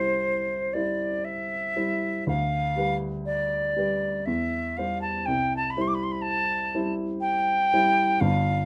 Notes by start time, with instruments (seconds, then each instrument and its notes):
Already playing: grand piano C2 G3 E4 C5, flute C5
0.73 grand piano G3 E4 C5, flute D5
1.24 flute E5
1.76 grand piano G3 E4 C5
2.27 grand piano D2, flute F5
2.76 grand piano G3 G4 B4
3.25 flute D5
3.76 grand piano G3 G4 B4
4.25 grand piano E2, flute E5
4.77 grand piano G3 G4 C5, flute F5
5.01 flute A5
5.25 grand piano C2, flute G5
5.56 flute A5
5.70 flute B5
5.77 grand piano G3 E4 C5
5.81 flute C6
5.87 flute D6
5.94 flute B5
6.03 flute C6
6.11 flute B5
6.21 flute A5
6.74 grand piano G3 E4 C5
7.20 flute G5
7.73 grand piano G3 E4 C5
8.20 grand piano G1 G2, flute F5